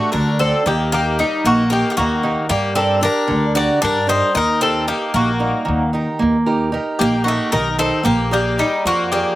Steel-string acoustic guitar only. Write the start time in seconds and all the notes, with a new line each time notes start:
Already playing: A3 D4 F#4 A4
0.13 D3
0.39 D4 F#4 A4
0.67 D#3
0.92 D#4 G4 A#4
1.20 D#4 G4 A#4
1.46 A#3
1.71 D#4 G4 A#4
1.99 D#3
2.23 D#4 G4 A#4
2.51 G3
2.75 D4 G4 A#4
3.01 D4 G4 A#4
3.28 D3
3.55 D4 G4 A#4
3.82 G3
4.07 D4 G4 A#4
4.35 D#3
4.61 D#4 G4 A#4
4.88 D#4 G4 A#4
5.14 A#3
5.39 G3 D#4 A#4
5.65 D#3
5.93 D#4 G4 A#4
6.19 A#3
6.46 D#4 G4 A#4
6.72 D#4 G4 A#4
7.00 A#3
7.26 D#4 G4 A#4
7.52 D#3
7.78 D#4 G4 A#4
8.03 A#3
8.31 G#4 A#4 D5
8.58 G#4 A#4 D5
8.86 F3
9.13 G#4 A#4 D5